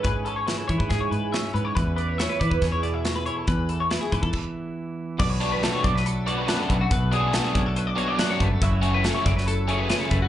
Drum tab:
CC |----------------|----------------|--------x-------|x---------------|
HH |x-x-x-x-x-x-x-x-|x-x-x-x-x-x-x-x-|x-x-x-x---------|--x-x-x-x-x-x-x-|
SD |----o---o---o---|----o---o---o---|----o-----------|----o--o----o---|
BD |o-----ooo-------|o-----ooo-------|o-----ooo-------|o-----o-------o-|

CC |----------------|----------------|
HH |x-x-x-x-x-x-x-x-|x-x-x-x-x-x-x-x-|
SD |----o-------o---|----o--o----o---|
BD |o-----o-------o-|o-----o-------o-|